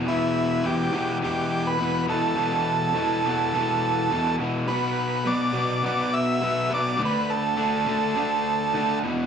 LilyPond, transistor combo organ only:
\new Staff \with { instrumentName = "Transistor combo organ" } { \time 4/4 \key e \minor \tempo 4 = 104 e'4 g'4 g'8. b'8. a'8~ | a'2.~ a'8 r8 | b'4 d''4 d''8 e''4 d''8 | b'8 a'2. r8 | }